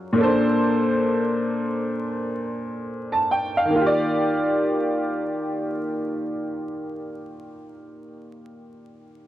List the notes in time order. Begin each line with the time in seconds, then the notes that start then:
Already playing: F#3 C#4 F4 G#4 A#4
0.13 A#2 A#3
0.18 C#4 A4
0.23 D4 C5
3.12 A5
3.31 G5
3.57 F5
3.65 D#3
3.71 A#3
3.76 F4
3.81 G4
3.86 D5